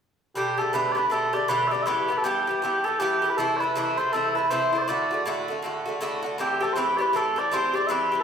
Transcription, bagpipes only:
0.36 0.59 G4 medium
0.59 0.74 A4 medium
0.74 0.92 B4 medium
0.92 0.96 D5 medium
0.96 1.11 B4 medium
1.11 1.34 A4 medium
1.34 1.49 D5 medium
1.49 1.68 B4 medium
1.68 1.72 E5 medium
1.72 1.83 D5 medium
1.83 1.87 E5 medium
1.87 2.17 B4 medium
2.17 2.24 A4 medium
2.24 2.85 G4 medium
2.85 3.00 A4 medium
3.00 3.30 G4 medium
3.30 3.37 B4 medium
3.37 3.57 A4 medium
3.57 3.98 B4 medium
3.57 3.60 D5 medium
3.98 4.13 C5 medium
4.13 4.35 A4 medium
4.35 4.51 B4 medium
4.51 4.78 C5 medium
4.78 4.88 C5 medium
4.78 4.81 D5 medium
4.88 5.23 D5 medium
6.40 6.63 G4 medium
6.63 6.73 A4 medium
6.73 6.78 C5 medium
6.78 6.97 B4 medium
6.97 7.16 B4 medium
6.97 7.01 D5 medium
7.16 7.38 A4 medium
7.38 7.53 D5 medium
7.53 7.75 C5 medium
7.75 7.87 D5 medium
7.87 8.20 B4 medium
7.87 7.90 E5 medium
8.20 8.23 A4 medium

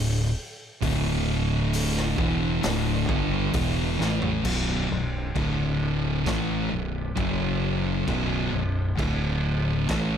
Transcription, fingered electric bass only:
0.00 0.35 D1 medium
0.83 2.14 D1 loud
2.18 2.60 E1 medium
2.64 3.06 D1 medium
3.09 3.51 G1 loud
3.54 3.96 E1 medium
4.00 4.42 A1 medium
4.45 4.87 B0 loud
4.90 5.32 B0 medium
5.35 6.22 D1 medium
6.26 6.68 A1 medium
6.72 7.14 B0 medium
7.17 8.04 F#1 medium
8.08 8.50 B0 loud
8.53 8.95 B0 medium
8.99 9.85 D1 medium
9.89 10.17 A1 medium

